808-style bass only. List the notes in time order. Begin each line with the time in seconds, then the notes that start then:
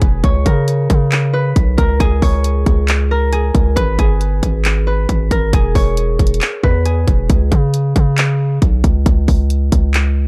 0.02 E1
0.24 C#2
0.46 C#3
0.90 C#3
1.56 B1
1.78 C#2
2.00 C#2
2.22 C#2
2.66 C#2
3.55 C#2
3.77 G#1
3.99 G1
4.43 G#1
5.09 G#1
5.31 G#1
5.53 E1
5.75 E1
6.19 E1
6.63 E2
7.08 E1
7.30 C#2
7.52 C#3
7.96 C#3
8.62 B1
8.84 C#2
9.06 C#2
9.28 C#2
9.72 C#2